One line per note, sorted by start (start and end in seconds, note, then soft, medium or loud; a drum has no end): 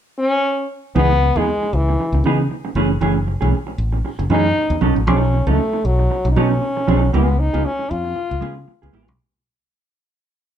0.19 0.66 C#4 loud
0.95 1.30 C#2 medium
0.95 1.11 E3 medium
0.95 1.10 B3 medium
0.95 1.39 B3 loud
0.95 1.10 D#4 medium
0.95 1.10 G#4 medium
1.11 muted clean electric guitar stroke soft
1.21 muted clean electric guitar stroke soft
1.36 1.45 E2 medium
1.36 1.46 E3 medium
1.36 1.77 G#3 loud
1.36 1.46 B3 soft
1.36 1.46 D#4 soft
1.36 1.46 G#4 medium
1.48 muted clean electric guitar stroke soft
1.63 muted clean electric guitar stroke soft
1.73 1.95 C#2 medium
1.73 2.26 E3 medium
1.89 muted clean electric guitar stroke medium
2.00 muted clean electric guitar stroke soft
2.12 2.22 C#2 medium
2.12 muted clean electric guitar stroke soft
2.24 2.46 C#3 medium
2.24 2.40 E3 medium
2.24 2.40 B3 medium
2.24 2.40 D#4 medium
2.24 2.39 G#4 medium
2.40 muted clean electric guitar stroke soft
2.50 muted clean electric guitar stroke soft
2.65 muted clean electric guitar stroke medium
2.75 2.97 F#1 medium
2.75 2.91 E3 medium
2.75 2.90 A3 medium
2.75 2.90 C#4 loud
2.75 2.89 G#4 loud
2.90 muted clean electric guitar stroke soft
3.01 3.35 F#1 medium
3.01 3.17 E3 medium
3.01 3.15 A3 medium
3.01 3.15 C#4 medium
3.01 3.14 G#4 medium
3.16 muted clean electric guitar stroke soft
3.27 muted clean electric guitar stroke soft
3.41 3.51 B1 medium
3.41 3.52 E3 soft
3.41 3.52 A3 medium
3.41 3.51 C#4 medium
3.41 3.51 G#4 medium
3.54 muted clean electric guitar stroke soft
3.67 muted clean electric guitar stroke soft
3.78 4.00 A1 medium
3.92 muted clean electric guitar stroke soft
4.05 muted clean electric guitar stroke soft
4.19 4.29 F#1 medium
4.19 muted clean electric guitar stroke soft
4.30 4.52 F#2 medium
4.30 4.46 E3 medium
4.30 4.45 A3 medium
4.30 4.44 C#4 medium
4.30 4.79 D#4 loud
4.30 4.44 G#4 loud
4.45 muted clean electric guitar stroke soft
4.57 muted clean electric guitar stroke soft
4.70 4.80 E2 medium
4.70 muted clean electric guitar stroke soft
4.81 4.94 B1 medium
4.81 4.97 F#3 medium
4.81 4.96 C#4 medium
4.81 4.96 D#4 medium
4.81 4.95 A4 medium
4.96 5.07 A1 medium
4.96 muted clean electric guitar stroke soft
5.07 5.41 B1 loud
5.07 5.28 F#3 medium
5.07 5.22 C#4 medium
5.07 5.51 C#4 medium
5.07 5.21 D#4 medium
5.07 5.20 A4 medium
5.21 muted clean electric guitar stroke medium
5.33 muted clean electric guitar stroke medium
5.47 5.57 C#2 medium
5.47 5.58 F#3 medium
5.47 5.87 A3 medium
5.47 5.58 C#4 soft
5.47 5.57 D#4 medium
5.47 5.57 A4 medium
5.59 muted clean electric guitar stroke soft
5.73 muted clean electric guitar stroke medium
5.85 6.06 B1 medium
5.85 6.31 F#3 medium
5.99 muted clean electric guitar stroke soft
6.10 muted clean electric guitar stroke soft
6.25 6.34 B1 medium
6.25 muted clean electric guitar stroke soft
6.32 6.40 D#4 medium
6.36 6.58 B2 loud
6.36 6.52 F#3 medium
6.36 6.50 C#4 medium
6.36 7.14 C#4 loud
6.36 6.50 D#4 loud
6.36 6.49 A4 loud
6.50 muted clean electric guitar stroke soft
6.61 muted clean electric guitar stroke soft
6.77 muted clean electric guitar stroke medium
6.87 7.10 B1 medium
6.87 7.08 F#3 medium
6.87 7.02 C#4 medium
6.87 7.01 D#4 medium
6.87 7.01 A4 medium
7.02 muted clean electric guitar stroke soft
7.13 7.48 C#2 medium
7.13 7.34 G#3 medium
7.13 7.28 B3 medium
7.13 7.41 B3 medium
7.13 7.27 F4 medium
7.13 7.27 G#4 medium
7.28 muted clean electric guitar stroke medium
7.39 7.67 D#4 loud
7.39 muted clean electric guitar stroke soft
7.53 7.63 C#2 medium
7.53 7.63 G#3 soft
7.53 7.64 B3 soft
7.53 7.64 F4 medium
7.53 7.63 G#4 soft
7.64 7.93 C#4 loud
7.64 muted clean electric guitar stroke soft
7.79 muted clean electric guitar stroke soft
7.91 8.12 F2 medium
7.91 8.94 F4 loud
8.04 muted clean electric guitar stroke soft
8.16 muted clean electric guitar stroke soft
8.30 8.41 C#2 medium
8.30 muted clean electric guitar stroke soft
8.41 8.64 C#3 loud
8.41 8.57 G#3 medium
8.41 8.56 B3 medium
8.41 8.56 F4 medium
8.41 8.55 G#4 medium
8.56 muted clean electric guitar stroke soft
8.68 muted clean electric guitar stroke soft
8.82 8.92 C#2 medium
8.82 8.91 G#3 soft
8.82 8.92 B3 soft
8.82 8.92 F4 medium
8.82 8.92 G#4 medium
8.93 9.08 A1 medium
8.93 9.14 G#3 medium
8.93 9.07 B3 loud
8.93 9.07 F4 loud
8.93 9.06 G#4 loud
9.07 9.18 B1 medium
9.07 muted clean electric guitar stroke medium